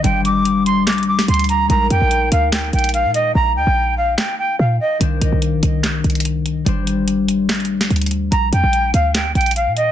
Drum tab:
HH |x---x---x---x---xxxx----xxxxx---|x---x---x---x---x---xxxxx---x---|--------------------------------|x---x---x---x---x---xxxxx---x---|
CP |----------------x---------------|----------------x---------------|----------------x---------------|----------------x---------------|
SD |----------------o-----o---------|----------------o---------------|----------------o---------------|----------------o---------------|

HH |x---x---x---x---xxxx----xxxxx---|x---x---x---x---x---xxxxx---x---|
CP |----------------x---------------|----------------x---------------|
SD |----------------o-----o---------|----------------o---------------|